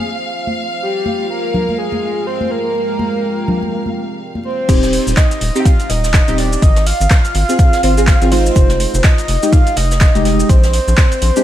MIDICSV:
0, 0, Header, 1, 7, 480
1, 0, Start_track
1, 0, Key_signature, -3, "major"
1, 0, Tempo, 483871
1, 809, Time_signature, 4, 2, 24, 8
1, 11346, End_track
2, 0, Start_track
2, 0, Title_t, "Violin section"
2, 0, Program_c, 0, 48
2, 0, Note_on_c, 0, 77, 79
2, 4661, Note_off_c, 0, 77, 0
2, 11346, End_track
3, 0, Start_track
3, 0, Title_t, "Soft synth lead"
3, 0, Program_c, 1, 80
3, 811, Note_on_c, 1, 67, 87
3, 1257, Note_off_c, 1, 67, 0
3, 1290, Note_on_c, 1, 70, 98
3, 1769, Note_on_c, 1, 68, 101
3, 1784, Note_off_c, 1, 70, 0
3, 2250, Note_on_c, 1, 72, 107
3, 2265, Note_off_c, 1, 68, 0
3, 2490, Note_on_c, 1, 70, 109
3, 2505, Note_off_c, 1, 72, 0
3, 4170, Note_off_c, 1, 70, 0
3, 4409, Note_on_c, 1, 72, 105
3, 5129, Note_on_c, 1, 75, 107
3, 5144, Note_off_c, 1, 72, 0
3, 5553, Note_off_c, 1, 75, 0
3, 5559, Note_on_c, 1, 79, 80
3, 5609, Note_on_c, 1, 77, 115
3, 5624, Note_off_c, 1, 79, 0
3, 5849, Note_on_c, 1, 75, 116
3, 5864, Note_off_c, 1, 77, 0
3, 6330, Note_on_c, 1, 74, 104
3, 6344, Note_off_c, 1, 75, 0
3, 6570, Note_on_c, 1, 75, 107
3, 6585, Note_off_c, 1, 74, 0
3, 6809, Note_on_c, 1, 77, 127
3, 6824, Note_off_c, 1, 75, 0
3, 8249, Note_on_c, 1, 72, 108
3, 8264, Note_off_c, 1, 77, 0
3, 8969, Note_on_c, 1, 75, 103
3, 8984, Note_off_c, 1, 72, 0
3, 9443, Note_off_c, 1, 75, 0
3, 9449, Note_on_c, 1, 77, 113
3, 9689, Note_on_c, 1, 75, 114
3, 9704, Note_off_c, 1, 77, 0
3, 10163, Note_off_c, 1, 75, 0
3, 10169, Note_on_c, 1, 75, 103
3, 10409, Note_on_c, 1, 72, 96
3, 10424, Note_off_c, 1, 75, 0
3, 10643, Note_off_c, 1, 72, 0
3, 10649, Note_on_c, 1, 72, 108
3, 11346, Note_off_c, 1, 72, 0
3, 11346, End_track
4, 0, Start_track
4, 0, Title_t, "Ambient pad"
4, 0, Program_c, 2, 92
4, 0, Note_on_c, 2, 65, 91
4, 0, Note_on_c, 2, 72, 75
4, 955, Note_on_c, 2, 56, 89
4, 1433, Note_on_c, 2, 79, 75
4, 1476, Note_off_c, 2, 72, 0
4, 2729, Note_on_c, 2, 60, 93
4, 2936, Note_on_c, 2, 70, 75
4, 3506, Note_off_c, 2, 65, 0
4, 4649, Note_off_c, 2, 56, 0
4, 4649, Note_off_c, 2, 60, 0
4, 4650, Note_off_c, 2, 70, 0
4, 4650, Note_off_c, 2, 79, 0
4, 11346, End_track
5, 0, Start_track
5, 0, Title_t, "Synth stab"
5, 0, Program_c, 3, 62
5, 4649, Note_on_c, 3, 60, 104
5, 4650, Note_on_c, 3, 63, 94
5, 4650, Note_on_c, 3, 67, 112
5, 5369, Note_off_c, 3, 60, 0
5, 5369, Note_off_c, 3, 63, 0
5, 5370, Note_off_c, 3, 67, 0
5, 5509, Note_on_c, 3, 60, 102
5, 5510, Note_on_c, 3, 63, 93
5, 5510, Note_on_c, 3, 67, 109
5, 5642, Note_off_c, 3, 60, 0
5, 5642, Note_off_c, 3, 63, 0
5, 5642, Note_off_c, 3, 67, 0
5, 6230, Note_on_c, 3, 60, 86
5, 6230, Note_on_c, 3, 63, 80
5, 6230, Note_on_c, 3, 67, 99
5, 6558, Note_off_c, 3, 60, 0
5, 6558, Note_off_c, 3, 63, 0
5, 6558, Note_off_c, 3, 67, 0
5, 7430, Note_on_c, 3, 60, 86
5, 7430, Note_on_c, 3, 65, 79
5, 7430, Note_on_c, 3, 68, 97
5, 7750, Note_off_c, 3, 60, 0
5, 7750, Note_off_c, 3, 65, 0
5, 7750, Note_off_c, 3, 68, 0
5, 7770, Note_on_c, 3, 60, 99
5, 7770, Note_on_c, 3, 65, 90
5, 7770, Note_on_c, 3, 72, 106
5, 7876, Note_off_c, 3, 60, 0
5, 7876, Note_off_c, 3, 65, 0
5, 7876, Note_off_c, 3, 72, 0
5, 7910, Note_on_c, 3, 60, 101
5, 7910, Note_on_c, 3, 65, 95
5, 7910, Note_on_c, 3, 68, 112
5, 7987, Note_off_c, 3, 60, 0
5, 7987, Note_off_c, 3, 65, 0
5, 7987, Note_off_c, 3, 68, 0
5, 8150, Note_on_c, 3, 60, 89
5, 8150, Note_on_c, 3, 65, 78
5, 8150, Note_on_c, 3, 68, 95
5, 8225, Note_off_c, 3, 60, 0
5, 8226, Note_off_c, 3, 65, 0
5, 8226, Note_off_c, 3, 68, 0
5, 8250, Note_on_c, 3, 56, 94
5, 8250, Note_on_c, 3, 63, 89
5, 8251, Note_on_c, 3, 65, 107
5, 9316, Note_off_c, 3, 56, 0
5, 9316, Note_off_c, 3, 63, 0
5, 9316, Note_off_c, 3, 65, 0
5, 9350, Note_on_c, 3, 56, 97
5, 9350, Note_on_c, 3, 63, 93
5, 9350, Note_on_c, 3, 67, 113
5, 9482, Note_off_c, 3, 56, 0
5, 9482, Note_off_c, 3, 63, 0
5, 9482, Note_off_c, 3, 67, 0
5, 10070, Note_on_c, 3, 56, 89
5, 10070, Note_on_c, 3, 63, 78
5, 10070, Note_on_c, 3, 67, 99
5, 10398, Note_off_c, 3, 56, 0
5, 10398, Note_off_c, 3, 63, 0
5, 10398, Note_off_c, 3, 67, 0
5, 11270, Note_on_c, 3, 56, 86
5, 11270, Note_on_c, 3, 60, 78
5, 11270, Note_on_c, 3, 62, 79
5, 11270, Note_on_c, 3, 67, 98
5, 11346, Note_off_c, 3, 56, 0
5, 11346, Note_off_c, 3, 60, 0
5, 11346, Note_off_c, 3, 62, 0
5, 11346, Note_off_c, 3, 67, 0
5, 11346, End_track
6, 0, Start_track
6, 0, Title_t, "Analog synth bass"
6, 0, Program_c, 4, 38
6, 4650, Note_on_c, 4, 27, 100
6, 4947, Note_off_c, 4, 27, 0
6, 5029, Note_on_c, 4, 27, 85
6, 5093, Note_off_c, 4, 27, 0
6, 5369, Note_on_c, 4, 27, 82
6, 5458, Note_off_c, 4, 27, 0
6, 5849, Note_on_c, 4, 27, 85
6, 6147, Note_off_c, 4, 27, 0
6, 6229, Note_on_c, 4, 27, 86
6, 6510, Note_off_c, 4, 27, 0
6, 6570, Note_on_c, 4, 32, 103
6, 6867, Note_off_c, 4, 32, 0
6, 6949, Note_on_c, 4, 32, 86
6, 7012, Note_off_c, 4, 32, 0
6, 7289, Note_on_c, 4, 32, 86
6, 7378, Note_off_c, 4, 32, 0
6, 7769, Note_on_c, 4, 32, 85
6, 8067, Note_off_c, 4, 32, 0
6, 8149, Note_on_c, 4, 32, 85
6, 8431, Note_off_c, 4, 32, 0
6, 8490, Note_on_c, 4, 29, 98
6, 8787, Note_off_c, 4, 29, 0
6, 8869, Note_on_c, 4, 29, 84
6, 8932, Note_off_c, 4, 29, 0
6, 9209, Note_on_c, 4, 29, 82
6, 9298, Note_off_c, 4, 29, 0
6, 9689, Note_on_c, 4, 29, 85
6, 9987, Note_off_c, 4, 29, 0
6, 10069, Note_on_c, 4, 29, 85
6, 10350, Note_off_c, 4, 29, 0
6, 10410, Note_on_c, 4, 34, 100
6, 10707, Note_off_c, 4, 34, 0
6, 10789, Note_on_c, 4, 34, 86
6, 10853, Note_off_c, 4, 34, 0
6, 11129, Note_on_c, 4, 34, 84
6, 11218, Note_off_c, 4, 34, 0
6, 11346, End_track
7, 0, Start_track
7, 0, Title_t, "Drums"
7, 468, Note_on_c, 9, 63, 52
7, 568, Note_off_c, 9, 63, 0
7, 1048, Note_on_c, 9, 63, 61
7, 1147, Note_off_c, 9, 63, 0
7, 1530, Note_on_c, 9, 64, 81
7, 1629, Note_off_c, 9, 64, 0
7, 1673, Note_on_c, 9, 63, 57
7, 1772, Note_off_c, 9, 63, 0
7, 1908, Note_on_c, 9, 63, 63
7, 2007, Note_off_c, 9, 63, 0
7, 2388, Note_on_c, 9, 63, 59
7, 2488, Note_off_c, 9, 63, 0
7, 2968, Note_on_c, 9, 63, 62
7, 3067, Note_off_c, 9, 63, 0
7, 3454, Note_on_c, 9, 64, 83
7, 3553, Note_off_c, 9, 64, 0
7, 3597, Note_on_c, 9, 63, 55
7, 3696, Note_off_c, 9, 63, 0
7, 3829, Note_on_c, 9, 63, 61
7, 3929, Note_off_c, 9, 63, 0
7, 4318, Note_on_c, 9, 63, 57
7, 4417, Note_off_c, 9, 63, 0
7, 4649, Note_on_c, 9, 42, 76
7, 4650, Note_off_c, 9, 42, 0
7, 4650, Note_on_c, 9, 36, 112
7, 4650, Note_on_c, 9, 42, 83
7, 4650, Note_on_c, 9, 49, 101
7, 4654, Note_on_c, 9, 82, 56
7, 4749, Note_off_c, 9, 36, 0
7, 4749, Note_off_c, 9, 42, 0
7, 4749, Note_off_c, 9, 49, 0
7, 4753, Note_off_c, 9, 82, 0
7, 4790, Note_on_c, 9, 42, 54
7, 4793, Note_on_c, 9, 38, 49
7, 4794, Note_on_c, 9, 82, 34
7, 4889, Note_off_c, 9, 42, 0
7, 4889, Note_on_c, 9, 46, 105
7, 4890, Note_on_c, 9, 42, 72
7, 4892, Note_off_c, 9, 38, 0
7, 4894, Note_off_c, 9, 82, 0
7, 4989, Note_off_c, 9, 46, 0
7, 4990, Note_off_c, 9, 42, 0
7, 5034, Note_on_c, 9, 82, 67
7, 5125, Note_on_c, 9, 39, 121
7, 5126, Note_on_c, 9, 38, 127
7, 5129, Note_on_c, 9, 36, 116
7, 5130, Note_on_c, 9, 42, 83
7, 5133, Note_off_c, 9, 82, 0
7, 5134, Note_on_c, 9, 82, 54
7, 5135, Note_off_c, 9, 42, 0
7, 5135, Note_on_c, 9, 42, 95
7, 5224, Note_off_c, 9, 39, 0
7, 5226, Note_off_c, 9, 38, 0
7, 5229, Note_off_c, 9, 36, 0
7, 5233, Note_off_c, 9, 82, 0
7, 5234, Note_off_c, 9, 42, 0
7, 5270, Note_on_c, 9, 42, 56
7, 5274, Note_on_c, 9, 82, 34
7, 5369, Note_off_c, 9, 42, 0
7, 5369, Note_on_c, 9, 46, 97
7, 5372, Note_on_c, 9, 42, 67
7, 5373, Note_off_c, 9, 82, 0
7, 5469, Note_off_c, 9, 46, 0
7, 5471, Note_off_c, 9, 42, 0
7, 5514, Note_on_c, 9, 82, 67
7, 5610, Note_on_c, 9, 36, 121
7, 5610, Note_on_c, 9, 42, 82
7, 5612, Note_off_c, 9, 42, 0
7, 5612, Note_on_c, 9, 42, 85
7, 5613, Note_off_c, 9, 82, 0
7, 5614, Note_on_c, 9, 82, 58
7, 5709, Note_off_c, 9, 36, 0
7, 5711, Note_off_c, 9, 42, 0
7, 5713, Note_off_c, 9, 82, 0
7, 5750, Note_on_c, 9, 42, 53
7, 5755, Note_on_c, 9, 82, 33
7, 5849, Note_off_c, 9, 42, 0
7, 5849, Note_on_c, 9, 38, 48
7, 5850, Note_on_c, 9, 46, 104
7, 5854, Note_off_c, 9, 82, 0
7, 5854, Note_on_c, 9, 42, 76
7, 5948, Note_off_c, 9, 38, 0
7, 5949, Note_off_c, 9, 46, 0
7, 5953, Note_off_c, 9, 42, 0
7, 5992, Note_on_c, 9, 38, 49
7, 5994, Note_on_c, 9, 82, 68
7, 6085, Note_on_c, 9, 39, 122
7, 6088, Note_off_c, 9, 38, 0
7, 6088, Note_on_c, 9, 38, 117
7, 6090, Note_on_c, 9, 36, 120
7, 6090, Note_on_c, 9, 42, 82
7, 6093, Note_off_c, 9, 82, 0
7, 6094, Note_on_c, 9, 82, 56
7, 6095, Note_off_c, 9, 42, 0
7, 6095, Note_on_c, 9, 42, 92
7, 6184, Note_off_c, 9, 39, 0
7, 6187, Note_off_c, 9, 38, 0
7, 6189, Note_off_c, 9, 36, 0
7, 6193, Note_off_c, 9, 82, 0
7, 6194, Note_off_c, 9, 42, 0
7, 6230, Note_on_c, 9, 42, 56
7, 6234, Note_on_c, 9, 82, 34
7, 6236, Note_off_c, 9, 42, 0
7, 6236, Note_on_c, 9, 42, 47
7, 6325, Note_off_c, 9, 42, 0
7, 6325, Note_on_c, 9, 42, 63
7, 6330, Note_on_c, 9, 46, 91
7, 6333, Note_off_c, 9, 82, 0
7, 6333, Note_on_c, 9, 38, 39
7, 6424, Note_off_c, 9, 42, 0
7, 6429, Note_off_c, 9, 46, 0
7, 6432, Note_off_c, 9, 38, 0
7, 6471, Note_on_c, 9, 42, 40
7, 6474, Note_on_c, 9, 82, 67
7, 6569, Note_off_c, 9, 42, 0
7, 6569, Note_on_c, 9, 42, 81
7, 6570, Note_off_c, 9, 42, 0
7, 6570, Note_on_c, 9, 36, 118
7, 6570, Note_on_c, 9, 42, 78
7, 6573, Note_off_c, 9, 82, 0
7, 6574, Note_on_c, 9, 82, 55
7, 6669, Note_off_c, 9, 36, 0
7, 6669, Note_off_c, 9, 42, 0
7, 6673, Note_off_c, 9, 82, 0
7, 6707, Note_on_c, 9, 38, 57
7, 6710, Note_on_c, 9, 42, 53
7, 6714, Note_on_c, 9, 82, 33
7, 6806, Note_off_c, 9, 38, 0
7, 6807, Note_off_c, 9, 42, 0
7, 6807, Note_on_c, 9, 42, 71
7, 6810, Note_on_c, 9, 46, 108
7, 6812, Note_on_c, 9, 38, 35
7, 6813, Note_off_c, 9, 82, 0
7, 6906, Note_off_c, 9, 42, 0
7, 6909, Note_off_c, 9, 46, 0
7, 6911, Note_off_c, 9, 38, 0
7, 6954, Note_on_c, 9, 82, 67
7, 7044, Note_on_c, 9, 39, 123
7, 7049, Note_on_c, 9, 38, 110
7, 7049, Note_on_c, 9, 42, 91
7, 7050, Note_on_c, 9, 36, 123
7, 7053, Note_off_c, 9, 82, 0
7, 7054, Note_on_c, 9, 82, 53
7, 7144, Note_off_c, 9, 39, 0
7, 7149, Note_off_c, 9, 36, 0
7, 7149, Note_off_c, 9, 38, 0
7, 7149, Note_off_c, 9, 42, 0
7, 7153, Note_off_c, 9, 82, 0
7, 7190, Note_on_c, 9, 42, 53
7, 7194, Note_on_c, 9, 82, 33
7, 7289, Note_off_c, 9, 42, 0
7, 7290, Note_on_c, 9, 46, 98
7, 7293, Note_off_c, 9, 82, 0
7, 7296, Note_on_c, 9, 42, 73
7, 7389, Note_off_c, 9, 46, 0
7, 7395, Note_off_c, 9, 42, 0
7, 7434, Note_on_c, 9, 82, 66
7, 7524, Note_on_c, 9, 42, 92
7, 7530, Note_off_c, 9, 42, 0
7, 7530, Note_on_c, 9, 36, 122
7, 7530, Note_on_c, 9, 42, 81
7, 7533, Note_off_c, 9, 82, 0
7, 7534, Note_on_c, 9, 82, 53
7, 7629, Note_off_c, 9, 36, 0
7, 7629, Note_off_c, 9, 42, 0
7, 7634, Note_off_c, 9, 82, 0
7, 7670, Note_on_c, 9, 38, 41
7, 7670, Note_on_c, 9, 42, 54
7, 7674, Note_on_c, 9, 82, 32
7, 7769, Note_off_c, 9, 42, 0
7, 7769, Note_on_c, 9, 42, 72
7, 7770, Note_off_c, 9, 38, 0
7, 7770, Note_on_c, 9, 46, 108
7, 7774, Note_off_c, 9, 82, 0
7, 7868, Note_off_c, 9, 42, 0
7, 7869, Note_off_c, 9, 46, 0
7, 7914, Note_on_c, 9, 82, 66
7, 8005, Note_on_c, 9, 39, 124
7, 8009, Note_on_c, 9, 38, 107
7, 8010, Note_on_c, 9, 36, 121
7, 8010, Note_on_c, 9, 42, 82
7, 8012, Note_off_c, 9, 42, 0
7, 8012, Note_on_c, 9, 42, 92
7, 8013, Note_off_c, 9, 82, 0
7, 8014, Note_on_c, 9, 82, 53
7, 8104, Note_off_c, 9, 39, 0
7, 8109, Note_off_c, 9, 36, 0
7, 8109, Note_off_c, 9, 38, 0
7, 8112, Note_off_c, 9, 42, 0
7, 8113, Note_off_c, 9, 82, 0
7, 8150, Note_on_c, 9, 42, 54
7, 8154, Note_on_c, 9, 82, 33
7, 8249, Note_off_c, 9, 42, 0
7, 8250, Note_on_c, 9, 46, 95
7, 8253, Note_off_c, 9, 82, 0
7, 8254, Note_off_c, 9, 46, 0
7, 8254, Note_on_c, 9, 46, 84
7, 8353, Note_off_c, 9, 46, 0
7, 8394, Note_on_c, 9, 82, 65
7, 8486, Note_on_c, 9, 42, 87
7, 8490, Note_off_c, 9, 42, 0
7, 8490, Note_on_c, 9, 36, 119
7, 8490, Note_on_c, 9, 42, 76
7, 8493, Note_off_c, 9, 82, 0
7, 8494, Note_on_c, 9, 82, 54
7, 8589, Note_off_c, 9, 36, 0
7, 8589, Note_off_c, 9, 42, 0
7, 8594, Note_off_c, 9, 82, 0
7, 8623, Note_on_c, 9, 38, 48
7, 8630, Note_on_c, 9, 42, 52
7, 8634, Note_on_c, 9, 82, 31
7, 8722, Note_off_c, 9, 38, 0
7, 8729, Note_off_c, 9, 42, 0
7, 8730, Note_on_c, 9, 46, 113
7, 8731, Note_on_c, 9, 42, 66
7, 8734, Note_off_c, 9, 82, 0
7, 8829, Note_off_c, 9, 46, 0
7, 8831, Note_off_c, 9, 42, 0
7, 8874, Note_on_c, 9, 82, 63
7, 8965, Note_on_c, 9, 39, 120
7, 8970, Note_on_c, 9, 36, 124
7, 8970, Note_on_c, 9, 42, 75
7, 8972, Note_off_c, 9, 42, 0
7, 8972, Note_on_c, 9, 38, 110
7, 8972, Note_on_c, 9, 42, 95
7, 8973, Note_off_c, 9, 82, 0
7, 8974, Note_on_c, 9, 82, 52
7, 9064, Note_off_c, 9, 39, 0
7, 9069, Note_off_c, 9, 36, 0
7, 9071, Note_off_c, 9, 38, 0
7, 9071, Note_off_c, 9, 42, 0
7, 9073, Note_off_c, 9, 82, 0
7, 9110, Note_on_c, 9, 42, 50
7, 9114, Note_on_c, 9, 82, 32
7, 9209, Note_off_c, 9, 42, 0
7, 9210, Note_on_c, 9, 42, 74
7, 9210, Note_on_c, 9, 46, 101
7, 9214, Note_off_c, 9, 82, 0
7, 9309, Note_off_c, 9, 46, 0
7, 9310, Note_off_c, 9, 42, 0
7, 9354, Note_on_c, 9, 82, 64
7, 9446, Note_on_c, 9, 42, 87
7, 9450, Note_off_c, 9, 42, 0
7, 9450, Note_on_c, 9, 36, 127
7, 9450, Note_on_c, 9, 42, 81
7, 9453, Note_off_c, 9, 82, 0
7, 9454, Note_on_c, 9, 82, 54
7, 9549, Note_off_c, 9, 36, 0
7, 9549, Note_off_c, 9, 42, 0
7, 9553, Note_off_c, 9, 82, 0
7, 9590, Note_on_c, 9, 42, 51
7, 9594, Note_on_c, 9, 82, 32
7, 9685, Note_on_c, 9, 38, 51
7, 9689, Note_off_c, 9, 42, 0
7, 9690, Note_on_c, 9, 46, 115
7, 9693, Note_on_c, 9, 42, 66
7, 9694, Note_off_c, 9, 82, 0
7, 9784, Note_off_c, 9, 38, 0
7, 9789, Note_off_c, 9, 46, 0
7, 9792, Note_off_c, 9, 42, 0
7, 9834, Note_on_c, 9, 82, 64
7, 9835, Note_on_c, 9, 38, 46
7, 9918, Note_on_c, 9, 42, 85
7, 9921, Note_off_c, 9, 38, 0
7, 9921, Note_on_c, 9, 38, 112
7, 9925, Note_on_c, 9, 39, 120
7, 9930, Note_off_c, 9, 42, 0
7, 9930, Note_on_c, 9, 36, 127
7, 9930, Note_on_c, 9, 42, 75
7, 9934, Note_off_c, 9, 82, 0
7, 9934, Note_on_c, 9, 82, 52
7, 10021, Note_off_c, 9, 38, 0
7, 10024, Note_off_c, 9, 39, 0
7, 10029, Note_off_c, 9, 36, 0
7, 10029, Note_off_c, 9, 42, 0
7, 10033, Note_off_c, 9, 82, 0
7, 10069, Note_on_c, 9, 42, 40
7, 10070, Note_off_c, 9, 42, 0
7, 10070, Note_on_c, 9, 42, 53
7, 10074, Note_on_c, 9, 82, 33
7, 10169, Note_off_c, 9, 42, 0
7, 10169, Note_on_c, 9, 42, 67
7, 10170, Note_on_c, 9, 46, 92
7, 10172, Note_on_c, 9, 38, 41
7, 10174, Note_off_c, 9, 82, 0
7, 10268, Note_off_c, 9, 42, 0
7, 10269, Note_off_c, 9, 46, 0
7, 10271, Note_off_c, 9, 38, 0
7, 10306, Note_on_c, 9, 42, 46
7, 10314, Note_on_c, 9, 82, 62
7, 10406, Note_off_c, 9, 42, 0
7, 10409, Note_on_c, 9, 42, 75
7, 10410, Note_on_c, 9, 36, 120
7, 10413, Note_off_c, 9, 82, 0
7, 10414, Note_off_c, 9, 42, 0
7, 10414, Note_on_c, 9, 42, 84
7, 10414, Note_on_c, 9, 82, 53
7, 10509, Note_off_c, 9, 36, 0
7, 10513, Note_off_c, 9, 42, 0
7, 10513, Note_off_c, 9, 82, 0
7, 10550, Note_on_c, 9, 42, 50
7, 10551, Note_on_c, 9, 38, 53
7, 10554, Note_on_c, 9, 82, 32
7, 10649, Note_off_c, 9, 42, 0
7, 10649, Note_on_c, 9, 46, 109
7, 10650, Note_off_c, 9, 38, 0
7, 10652, Note_on_c, 9, 38, 40
7, 10652, Note_on_c, 9, 42, 65
7, 10653, Note_off_c, 9, 82, 0
7, 10748, Note_off_c, 9, 46, 0
7, 10751, Note_off_c, 9, 38, 0
7, 10752, Note_off_c, 9, 42, 0
7, 10794, Note_on_c, 9, 82, 65
7, 10885, Note_on_c, 9, 39, 117
7, 10888, Note_on_c, 9, 42, 93
7, 10889, Note_off_c, 9, 42, 0
7, 10889, Note_on_c, 9, 38, 124
7, 10889, Note_on_c, 9, 42, 78
7, 10890, Note_on_c, 9, 36, 120
7, 10893, Note_off_c, 9, 82, 0
7, 10894, Note_on_c, 9, 82, 54
7, 10984, Note_off_c, 9, 39, 0
7, 10988, Note_off_c, 9, 38, 0
7, 10989, Note_off_c, 9, 36, 0
7, 10989, Note_off_c, 9, 42, 0
7, 10993, Note_off_c, 9, 82, 0
7, 11030, Note_on_c, 9, 42, 51
7, 11034, Note_on_c, 9, 82, 33
7, 11128, Note_off_c, 9, 42, 0
7, 11128, Note_on_c, 9, 42, 71
7, 11129, Note_on_c, 9, 46, 102
7, 11133, Note_off_c, 9, 82, 0
7, 11227, Note_off_c, 9, 42, 0
7, 11228, Note_off_c, 9, 46, 0
7, 11274, Note_on_c, 9, 82, 65
7, 11346, Note_off_c, 9, 82, 0
7, 11346, End_track
0, 0, End_of_file